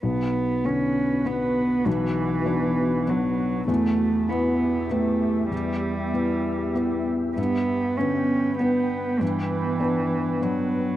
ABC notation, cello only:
X:1
M:3/4
L:1/8
Q:1/4=98
K:Bm
V:1 name="Cello"
B,2 C2 B,2 | E,4 F,2 | A,2 B,2 A,2 | G,4- G, z |
B,2 C2 B,2 | E,4 F,2 |]